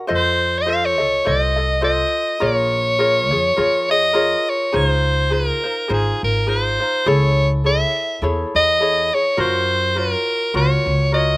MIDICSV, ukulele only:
0, 0, Header, 1, 2, 480
1, 0, Start_track
1, 0, Key_signature, -5, "minor"
1, 0, Tempo, 580271
1, 78, Time_signature, 4, 2, 24, 8
1, 3918, Key_signature, -5, "major"
1, 9408, End_track
2, 0, Start_track
2, 0, Title_t, "Ukulele"
2, 0, Program_c, 0, 24
2, 60, Note_on_c, 0, 72, 83
2, 69, Note_on_c, 0, 65, 81
2, 70, Note_on_c, 0, 69, 88
2, 71, Note_on_c, 0, 75, 87
2, 535, Note_off_c, 0, 72, 0
2, 545, Note_on_c, 0, 72, 76
2, 546, Note_off_c, 0, 75, 0
2, 547, Note_off_c, 0, 65, 0
2, 547, Note_off_c, 0, 69, 0
2, 550, Note_on_c, 0, 65, 70
2, 556, Note_on_c, 0, 75, 84
2, 557, Note_on_c, 0, 69, 76
2, 800, Note_off_c, 0, 75, 0
2, 808, Note_off_c, 0, 69, 0
2, 810, Note_on_c, 0, 75, 53
2, 815, Note_off_c, 0, 65, 0
2, 818, Note_on_c, 0, 69, 46
2, 822, Note_off_c, 0, 72, 0
2, 825, Note_on_c, 0, 65, 41
2, 1025, Note_off_c, 0, 65, 0
2, 1029, Note_off_c, 0, 69, 0
2, 1029, Note_off_c, 0, 75, 0
2, 1030, Note_on_c, 0, 72, 67
2, 1035, Note_on_c, 0, 65, 56
2, 1038, Note_on_c, 0, 69, 68
2, 1046, Note_on_c, 0, 75, 71
2, 1282, Note_off_c, 0, 75, 0
2, 1287, Note_off_c, 0, 69, 0
2, 1292, Note_on_c, 0, 75, 48
2, 1297, Note_on_c, 0, 69, 49
2, 1298, Note_off_c, 0, 65, 0
2, 1304, Note_off_c, 0, 72, 0
2, 1308, Note_on_c, 0, 65, 39
2, 1496, Note_off_c, 0, 65, 0
2, 1497, Note_off_c, 0, 69, 0
2, 1498, Note_on_c, 0, 72, 73
2, 1503, Note_off_c, 0, 75, 0
2, 1506, Note_on_c, 0, 65, 83
2, 1507, Note_on_c, 0, 69, 82
2, 1513, Note_on_c, 0, 75, 80
2, 1982, Note_off_c, 0, 65, 0
2, 1983, Note_off_c, 0, 72, 0
2, 1986, Note_on_c, 0, 65, 86
2, 1986, Note_on_c, 0, 70, 80
2, 1988, Note_off_c, 0, 69, 0
2, 1992, Note_off_c, 0, 75, 0
2, 1992, Note_on_c, 0, 68, 88
2, 1995, Note_on_c, 0, 73, 95
2, 2460, Note_off_c, 0, 70, 0
2, 2468, Note_off_c, 0, 65, 0
2, 2470, Note_on_c, 0, 70, 69
2, 2472, Note_on_c, 0, 65, 72
2, 2473, Note_off_c, 0, 68, 0
2, 2476, Note_on_c, 0, 68, 73
2, 2479, Note_off_c, 0, 73, 0
2, 2483, Note_on_c, 0, 73, 80
2, 2728, Note_off_c, 0, 73, 0
2, 2735, Note_off_c, 0, 68, 0
2, 2738, Note_on_c, 0, 73, 54
2, 2742, Note_off_c, 0, 65, 0
2, 2745, Note_off_c, 0, 70, 0
2, 2745, Note_on_c, 0, 68, 52
2, 2752, Note_on_c, 0, 65, 49
2, 2944, Note_off_c, 0, 65, 0
2, 2949, Note_off_c, 0, 68, 0
2, 2949, Note_on_c, 0, 70, 69
2, 2953, Note_off_c, 0, 73, 0
2, 2954, Note_on_c, 0, 65, 73
2, 2959, Note_on_c, 0, 68, 73
2, 2963, Note_on_c, 0, 73, 78
2, 3213, Note_off_c, 0, 73, 0
2, 3220, Note_off_c, 0, 68, 0
2, 3223, Note_on_c, 0, 73, 59
2, 3224, Note_off_c, 0, 70, 0
2, 3227, Note_off_c, 0, 65, 0
2, 3230, Note_on_c, 0, 68, 49
2, 3236, Note_on_c, 0, 65, 48
2, 3417, Note_off_c, 0, 68, 0
2, 3418, Note_off_c, 0, 65, 0
2, 3418, Note_on_c, 0, 70, 80
2, 3423, Note_off_c, 0, 73, 0
2, 3427, Note_on_c, 0, 68, 89
2, 3428, Note_on_c, 0, 65, 98
2, 3433, Note_on_c, 0, 73, 96
2, 3904, Note_off_c, 0, 70, 0
2, 3908, Note_off_c, 0, 68, 0
2, 3908, Note_on_c, 0, 68, 82
2, 3911, Note_off_c, 0, 65, 0
2, 3914, Note_off_c, 0, 73, 0
2, 3914, Note_on_c, 0, 63, 86
2, 3917, Note_on_c, 0, 65, 85
2, 3917, Note_on_c, 0, 72, 86
2, 4384, Note_off_c, 0, 63, 0
2, 4384, Note_off_c, 0, 68, 0
2, 4387, Note_off_c, 0, 65, 0
2, 4387, Note_on_c, 0, 68, 58
2, 4394, Note_off_c, 0, 72, 0
2, 4394, Note_on_c, 0, 63, 58
2, 4397, Note_on_c, 0, 65, 63
2, 4404, Note_on_c, 0, 72, 62
2, 4652, Note_off_c, 0, 72, 0
2, 4662, Note_on_c, 0, 72, 47
2, 4663, Note_off_c, 0, 65, 0
2, 4663, Note_off_c, 0, 68, 0
2, 4666, Note_off_c, 0, 63, 0
2, 4673, Note_on_c, 0, 65, 43
2, 4679, Note_on_c, 0, 63, 41
2, 4862, Note_off_c, 0, 63, 0
2, 4865, Note_on_c, 0, 68, 71
2, 4867, Note_off_c, 0, 65, 0
2, 4868, Note_off_c, 0, 72, 0
2, 4872, Note_on_c, 0, 63, 73
2, 4877, Note_on_c, 0, 65, 87
2, 4878, Note_on_c, 0, 72, 88
2, 5345, Note_off_c, 0, 68, 0
2, 5346, Note_off_c, 0, 63, 0
2, 5348, Note_on_c, 0, 68, 59
2, 5352, Note_off_c, 0, 65, 0
2, 5354, Note_off_c, 0, 72, 0
2, 5356, Note_on_c, 0, 63, 69
2, 5362, Note_on_c, 0, 65, 65
2, 5364, Note_on_c, 0, 72, 66
2, 5616, Note_off_c, 0, 72, 0
2, 5624, Note_off_c, 0, 65, 0
2, 5624, Note_off_c, 0, 68, 0
2, 5626, Note_on_c, 0, 72, 53
2, 5627, Note_off_c, 0, 63, 0
2, 5634, Note_on_c, 0, 65, 48
2, 5640, Note_on_c, 0, 63, 41
2, 5837, Note_off_c, 0, 72, 0
2, 5840, Note_on_c, 0, 69, 81
2, 5841, Note_off_c, 0, 63, 0
2, 5841, Note_off_c, 0, 65, 0
2, 5844, Note_on_c, 0, 64, 88
2, 5845, Note_on_c, 0, 68, 91
2, 5852, Note_on_c, 0, 73, 92
2, 6311, Note_off_c, 0, 69, 0
2, 6317, Note_off_c, 0, 73, 0
2, 6318, Note_off_c, 0, 64, 0
2, 6320, Note_on_c, 0, 69, 57
2, 6321, Note_off_c, 0, 68, 0
2, 6327, Note_on_c, 0, 64, 59
2, 6332, Note_on_c, 0, 68, 60
2, 6337, Note_on_c, 0, 73, 55
2, 6791, Note_off_c, 0, 69, 0
2, 6795, Note_off_c, 0, 64, 0
2, 6801, Note_off_c, 0, 68, 0
2, 6801, Note_on_c, 0, 69, 78
2, 6805, Note_on_c, 0, 64, 81
2, 6808, Note_off_c, 0, 73, 0
2, 6811, Note_on_c, 0, 68, 84
2, 6811, Note_on_c, 0, 73, 85
2, 7267, Note_off_c, 0, 69, 0
2, 7275, Note_off_c, 0, 64, 0
2, 7277, Note_on_c, 0, 69, 64
2, 7279, Note_off_c, 0, 68, 0
2, 7285, Note_on_c, 0, 64, 61
2, 7289, Note_on_c, 0, 68, 64
2, 7291, Note_off_c, 0, 73, 0
2, 7294, Note_on_c, 0, 73, 66
2, 7543, Note_off_c, 0, 73, 0
2, 7548, Note_off_c, 0, 69, 0
2, 7550, Note_off_c, 0, 68, 0
2, 7551, Note_off_c, 0, 64, 0
2, 7553, Note_on_c, 0, 73, 58
2, 7560, Note_on_c, 0, 68, 48
2, 7566, Note_on_c, 0, 64, 47
2, 7751, Note_off_c, 0, 64, 0
2, 7752, Note_on_c, 0, 70, 81
2, 7754, Note_on_c, 0, 65, 83
2, 7755, Note_off_c, 0, 68, 0
2, 7758, Note_on_c, 0, 66, 92
2, 7760, Note_off_c, 0, 73, 0
2, 8226, Note_off_c, 0, 70, 0
2, 8236, Note_on_c, 0, 70, 58
2, 8238, Note_off_c, 0, 65, 0
2, 8238, Note_off_c, 0, 66, 0
2, 8241, Note_on_c, 0, 65, 63
2, 8247, Note_on_c, 0, 66, 61
2, 8254, Note_on_c, 0, 73, 58
2, 8707, Note_off_c, 0, 70, 0
2, 8716, Note_off_c, 0, 66, 0
2, 8717, Note_on_c, 0, 70, 73
2, 8719, Note_off_c, 0, 65, 0
2, 8722, Note_on_c, 0, 65, 86
2, 8723, Note_off_c, 0, 73, 0
2, 8726, Note_on_c, 0, 66, 87
2, 8726, Note_on_c, 0, 73, 86
2, 9189, Note_off_c, 0, 70, 0
2, 9199, Note_off_c, 0, 66, 0
2, 9199, Note_on_c, 0, 70, 59
2, 9201, Note_off_c, 0, 65, 0
2, 9204, Note_on_c, 0, 65, 63
2, 9209, Note_on_c, 0, 66, 64
2, 9210, Note_off_c, 0, 73, 0
2, 9213, Note_on_c, 0, 73, 75
2, 9408, Note_off_c, 0, 65, 0
2, 9408, Note_off_c, 0, 66, 0
2, 9408, Note_off_c, 0, 70, 0
2, 9408, Note_off_c, 0, 73, 0
2, 9408, End_track
0, 0, End_of_file